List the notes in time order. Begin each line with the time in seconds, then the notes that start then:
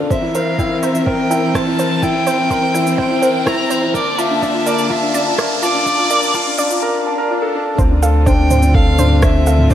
Already playing: C4 D4 F4 D5, riser
0.00 A4
0.10 E3 C4 A#4 C5 E5, kick, shaker
0.22 E4
0.35 A#4 C5 F5, shaker
0.58 E4 G5, kick, shaker
0.71 C4
0.82 C4 C5 E5, shaker
0.94 E4, shaker
1.06 A#4 C5 G5, kick
1.30 E4 G5, shaker
1.43 C4
1.54 C4 C5 A5, kick, cross-stick, shaker
1.67 E4
1.79 A#4 C5, shaker
2.02 E4 C5 G5, kick, shaker
2.15 C4
2.27 C4 C5, shaker
2.39 E4
2.50 A#4 C5, kick, shaker
2.74 E4 G5, shaker
2.86 C4, shaker
2.98 C4 C5 G5, kick
3.11 E4
3.22 A#4 C5, shaker
3.46 E4 G5 A#5, kick, cross-stick, shaker
3.58 C4
3.70 C4 C5, shaker
3.82 E4
3.94 D3 A#3 A#4 D5 A5, kick, shaker
4.18 F4 E5 A5, shaker
4.30 D4
4.42 D4 D5, kick, shaker
4.54 F4
4.66 A#4 D5, shaker
4.78 shaker
4.90 F4 E5 A5, kick
5.02 D4
5.14 D4 D5, shaker
5.26 F4
5.38 A#4 D5, kick, cross-stick, shaker
5.62 F4 D5 A5, shaker
5.75 D4
5.86 D4 D5, kick, shaker
5.98 F4
6.10 A#4 D5, shaker
6.23 shaker
6.34 F4 A5, kick, shaker
6.46 D4
6.58 D4 D5, shaker
6.70 F4, shaker
6.82 A#4, swell
7.06 A5
7.18 A#4
7.30 F4
7.42 A4
7.54 D4
7.78 D2 D3 C4 F4 C5, kick, shaker
7.90 D4
8.02 A4 F5, shaker
8.26 D4 C5 G5, kick, shaker
8.39 C4
8.51 C4 C5, mid tom, shaker
8.63 D4, shaker
8.74 A4 F5, kick
8.99 D4 C5, mid tom, shaker
9.11 C4
9.23 C4 C5 E5, kick, cross-stick, shaker
9.35 D4
9.47 A4 F5, shaker
9.59 mid tom
9.70 D4 C5, kick, shaker